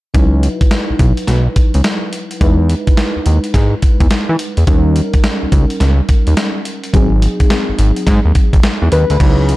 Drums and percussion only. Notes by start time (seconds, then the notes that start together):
0.14 kick, closed hi-hat
0.43 closed hi-hat
0.61 kick, closed hi-hat
0.71 snare, closed hi-hat
0.99 kick, closed hi-hat
1.17 closed hi-hat
1.27 snare, closed hi-hat
1.56 kick, closed hi-hat
1.74 closed hi-hat
1.84 snare, closed hi-hat
2.13 closed hi-hat
2.31 closed hi-hat
2.41 kick, closed hi-hat
2.70 closed hi-hat
2.87 kick, closed hi-hat
2.97 snare, closed hi-hat
3.26 closed hi-hat
3.44 closed hi-hat
3.54 kick, snare, closed hi-hat
3.82 kick, closed hi-hat
4.00 kick, closed hi-hat
4.10 snare, closed hi-hat
4.39 closed hi-hat
4.57 closed hi-hat
4.67 kick, closed hi-hat
4.96 closed hi-hat
5.13 kick, closed hi-hat
5.24 snare, closed hi-hat
5.52 kick, closed hi-hat
5.70 closed hi-hat
5.80 snare, closed hi-hat
6.09 kick, closed hi-hat
6.27 closed hi-hat
6.37 snare, closed hi-hat
6.65 closed hi-hat
6.84 closed hi-hat
6.94 kick, closed hi-hat
7.22 closed hi-hat
7.40 kick, closed hi-hat
7.50 snare, closed hi-hat
7.79 closed hi-hat
7.96 closed hi-hat
8.07 kick, snare, closed hi-hat
8.35 kick, closed hi-hat
8.53 kick, closed hi-hat
8.63 snare, closed hi-hat
8.92 closed hi-hat
9.10 closed hi-hat
9.20 kick, closed hi-hat, crash
9.49 closed hi-hat